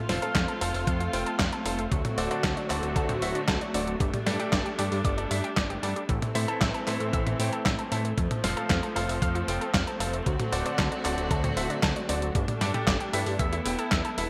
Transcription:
Already playing: A3 C4 F4
0.09 F1 C4 F4 A4 C5 F5, snare, open hi-hat
0.22 F4 A4 C5 F5, closed hi-hat
0.35 F2 F5, kick, snare, clap, closed hi-hat
0.48 A4, closed hi-hat
0.61 F1 F4 A4 C5 F5, open hi-hat
0.74 F1 A3, open hi-hat
0.87 F2 F5, kick, closed hi-hat
1.00 F4, closed hi-hat
1.13 F1 C4 F4 A4 C5 G5, open hi-hat
1.26 A4, closed hi-hat
1.39 F2 F5, kick, snare, clap, closed hi-hat
1.53 A4, closed hi-hat
1.65 F1 F4 A4 C5 F5, open hi-hat
1.79 A3, closed hi-hat
1.91 D2 D3 F#3 F#4, kick, closed hi-hat
2.05 F#3, closed hi-hat, high tom
2.18 D1 A3 F#4 A4 C5 D5, open hi-hat
2.31 D4 F#4 A4 C5 D5, closed hi-hat
2.44 D2 A4, kick, snare, clap, closed hi-hat
2.57 D4, closed hi-hat
2.70 D1 D4 F#4 A4 C5 D5, clap, open hi-hat
2.83 D1 F#3, closed hi-hat
2.96 D2 A4, kick, closed hi-hat
3.09 C4, closed hi-hat, high tom
3.22 D1 A3 F#4 A4 C5 E5, open hi-hat
3.35 D4, closed hi-hat
3.48 D2 A4, kick, snare, clap, closed hi-hat
3.61 D4, closed hi-hat
3.74 D1 D4 F#4 A4 C5 D5, open hi-hat
3.87 F#3, closed hi-hat
4.00 G1 G3 D4, kick, closed hi-hat
4.13 G3, closed hi-hat, high tom
4.26 G2 A3 D4 G4 A4 D5, snare, open hi-hat
4.39 D4 G4 A4 D5, closed hi-hat
4.52 G1 D5, kick, snare, clap, closed hi-hat
4.66 G4, closed hi-hat
4.78 G2 D4 G4 A4 D5, open hi-hat
4.92 G2 G3, open hi-hat
5.05 G1 D5, kick, closed hi-hat
5.18 D4, closed hi-hat
5.31 G2 A3 D4 G4 A4 E5, open hi-hat
5.44 G4, closed hi-hat
5.57 G1 D5, kick, snare, clap, closed hi-hat
5.70 G4, closed hi-hat
5.83 G2 D4 G4 A4 D5, open hi-hat
5.96 G3, closed hi-hat
6.09 A1 E3 A3 C4, kick, closed hi-hat
6.22 A3, closed hi-hat, high tom
6.35 A2 C4 E4 A4 C5 E5, open hi-hat
6.48 E4 A4 C5 E5, closed hi-hat
6.61 A1 E5, kick, snare, clap, closed hi-hat
6.74 A4, closed hi-hat
6.87 A2 E4 A4 C5 E5, clap, open hi-hat
7.00 A2 A3, closed hi-hat
7.13 A1 E5, kick, closed hi-hat
7.26 E4, closed hi-hat, high tom
7.39 A2 C4 E4 A4 C5 G5, open hi-hat
7.53 A4, closed hi-hat
7.65 A1 E5, kick, snare, clap, closed hi-hat
7.79 A4, closed hi-hat
7.92 A2 E4 A4 C5 E5, open hi-hat
8.05 A3, closed hi-hat
8.18 F2 F3 A3 C4, kick, closed hi-hat
8.31 A3, closed hi-hat, high tom
8.44 F1 C4 F4 A4 C5 F5, snare, open hi-hat
8.57 F4 A4 C5 F5, closed hi-hat
8.70 F2 F5, kick, snare, clap, closed hi-hat
8.83 A4, closed hi-hat
8.96 F1 F4 A4 C5 F5, open hi-hat
9.09 F1 A3, open hi-hat
9.22 F2 F5, kick, closed hi-hat
9.35 F4, closed hi-hat
9.48 F1 C4 F4 A4 C5 G5, open hi-hat
9.61 A4, closed hi-hat
9.74 F2 F5, kick, snare, clap, closed hi-hat
9.87 A4, closed hi-hat
10.00 F1 F4 A4 C5 F5, open hi-hat
10.13 A3, closed hi-hat
10.26 D2 D3 F#3 F#4, kick, closed hi-hat
10.39 F#3, closed hi-hat, high tom
10.52 D1 A3 F#4 A4 C5 D5, open hi-hat
10.65 D4 F#4 A4 C5 D5, closed hi-hat
10.78 D2 A4, kick, snare, clap, closed hi-hat
10.92 D4, closed hi-hat
11.05 D1 D4 F#4 A4 C5 D5, clap, open hi-hat
11.18 D1 F#3, closed hi-hat
11.31 D2 A4, kick, closed hi-hat
11.44 C4, closed hi-hat, high tom
11.57 D1 A3 F#4 A4 C5 E5, open hi-hat
11.70 D4, closed hi-hat
11.83 D2 A4, kick, snare, clap, closed hi-hat
11.96 D4, closed hi-hat
12.09 D1 D4 F#4 A4 C5 D5, open hi-hat
12.22 F#3, closed hi-hat
12.35 G1 G3 D4, kick, closed hi-hat
12.48 G3, closed hi-hat, high tom
12.61 G2 A3 D4 G4 A4 D5, snare, open hi-hat
12.74 D4 G4 A4 D5, closed hi-hat, high tom
12.87 G1 D5, kick, snare, clap, closed hi-hat
13.00 G4, closed hi-hat
13.13 G2 E4 G4 A4 B4 E5, open hi-hat
13.26 G2 G3, open hi-hat
13.39 E2 B3 E4 E5, kick, closed hi-hat
13.53 E4, closed hi-hat
13.65 E1 B3 E4 A4 B4 G5, open hi-hat
13.79 A4, closed hi-hat
13.91 E2 E5, kick, snare, clap, closed hi-hat
14.05 A4, closed hi-hat
14.18 E1 E4 A4 B4 E5, open hi-hat

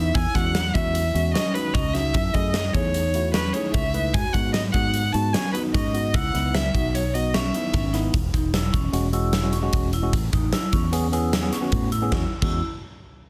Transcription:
Already playing: E2 B3 D#4 E4 E5
0.14 E2 E4 G#5, kick, closed hi-hat
0.34 E2 G#3 C#4 F#4 F#5, kick, snare, closed hi-hat
0.55 snare, closed hi-hat
0.74 E2 G#3 C#4 E4 F#4 E5, kick, closed hi-hat
0.95 closed hi-hat
1.14 E2 G#3 C#4 F#4, closed hi-hat
1.34 C#4 D#5, snare, closed hi-hat
1.54 G#3 C#4 D#4 F#4 B4, closed hi-hat
1.74 C#2 C#4 D#5, kick, closed hi-hat
1.93 G#3 C#4 D#4 F#4 E5, snare, closed hi-hat
2.14 F#2 E4, kick, closed hi-hat
2.34 F#2 A3 E4 G#4 D#5, kick, closed hi-hat
2.54 snare, closed hi-hat
2.73 E2 A3 D#4 E4 G#4 C#5, kick, closed hi-hat
2.94 closed hi-hat
3.14 A3 E4 F#4, closed hi-hat
3.34 C#4 B4, snare, closed hi-hat
3.53 A3 D#4 E4 G#4 C#5, closed hi-hat
3.74 C#2 C#4 E5, kick, closed hi-hat
3.94 A3 D#4 E4 B4, closed hi-hat
4.13 G#2 F#4 G#5, kick, closed hi-hat
4.33 G#2 B3 D#4 F#4 F#5, kick, closed hi-hat
4.53 D#5, snare, closed hi-hat
4.72 G#2 B3 D#4 F#4 F#5, kick, closed hi-hat
4.94 closed hi-hat
5.13 G#2 B3 D#4 F#4 A5, closed hi-hat
5.33 C#4 G#5, snare, closed hi-hat
5.53 B3 D#4 F#4 B4, closed hi-hat
5.73 G#2 C#4 D#5, kick, closed hi-hat
5.93 B3 D#4 F#4, closed hi-hat
6.14 C#2 E4 F#5, kick, closed hi-hat
6.34 C#2 B3 D#4 E4, snare, closed hi-hat
6.54 E5, snare, closed hi-hat
6.74 B1 B3 D#4 F#4, kick, closed hi-hat
6.95 C#5, closed hi-hat
7.14 B3 D#4 F#4 D#5, closed hi-hat
7.34 C#4 E5, snare, closed hi-hat
7.54 B3 D#4 E4, closed hi-hat
7.74 G#1 C#4, kick, snare, closed hi-hat
7.93 B3 D#4 E4, snare, closed hi-hat
8.14 E1, kick, closed hi-hat
8.33 E1 D#4, kick, closed hi-hat
8.54 E4, snare, closed hi-hat
8.73 E1 C#4, kick, closed hi-hat
8.93 E1 G#3 C#4 F#4, closed hi-hat
9.12 G#3 C#4 E4 F#4, closed hi-hat
9.33 snare, closed hi-hat
9.42 G#3 C#4 F#4
9.53 C#4, closed hi-hat
9.62 G#3 C#4 F#4
9.73 E1, kick, closed hi-hat
9.93 E4, closed hi-hat
10.02 G#3 C#4 F#4
10.13 A1, kick, closed hi-hat
10.33 A1 D#4, kick, closed hi-hat
10.53 E4, snare, closed hi-hat
10.73 E2 C#4, kick, closed hi-hat
10.92 B3 C#4 G#4, closed hi-hat
11.12 B3 C#4 E4 G#4, closed hi-hat
11.33 snare, closed hi-hat
11.41 B3 C#4 G#4
11.53 C#4, snare, closed hi-hat
11.61 B3 C#4 F#4
11.72 A2, kick, closed hi-hat
11.92 E4, closed hi-hat
12.02 B3 C#4 G#4
12.12 E2 G#3 C#4 E4 F#4, kick, snare
12.42 E2 G#3 C#4 E4 F#4, kick, crash

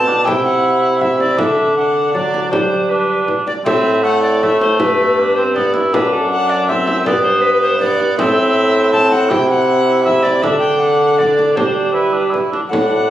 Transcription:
Already playing: A2 B2 A3 C5 A5
0.07 D4, frame drum
0.23 C3 E4 C5 G5, frame drum
0.45 F#5
1.01 E4 E5, frame drum
1.20 D5, frame drum
1.37 D3 D4 A4 E5, frame drum
1.75 D4 A4 F#5
2.12 F#3 D4 A4 D5, frame drum
2.34 frame drum
2.50 G3 D4 G4 C5, frame drum
2.87 D4 G4 B4
3.28 frame drum
3.47 D5, frame drum
3.63 A2 C4 E4 E5, frame drum
4.03 A3 F#5
4.22 D5
4.43 A3 E5, frame drum
4.61 C5, frame drum
4.76 G2 B3 D4 G4 B4, frame drum
5.20 D4
5.36 C4 C5
5.54 B3 D5, frame drum
5.74 E4, frame drum
5.89 F#2 D4 A4
5.93 F#2 D4 B4, frame drum
6.13 A4
6.31 F#5
6.50 D5
6.67 C4 E5, frame drum
6.87 frame drum
7.03 G2 B3 D4 B4 D5, frame drum
7.23 C5
7.41 B4
7.62 C5
7.78 B3 D4 B4 D5
7.82 frame drum
8.00 frame drum
8.14 A2 A3 C4 C5
8.18 C4 E5, frame drum
8.93 C4 A5, frame drum
9.11 F#5, frame drum
9.27 C3 E4 C5 G5, frame drum
9.50 F#5
10.04 E4 E5, frame drum
10.23 D5, frame drum
10.40 D3 D4 A4 E5, frame drum
10.44 D4
10.60 G5
10.78 D4 A4 F#5
11.15 D4 A4 D5
11.20 D4, frame drum
11.39 frame drum
11.55 G3 D4 G4 C5, frame drum
11.92 D4 E4 G4 B4
12.13 D4
12.30 E4, frame drum
12.52 D4, frame drum
12.67 A2 A3 C4 D4 E4 F#5
12.72 A2, frame drum

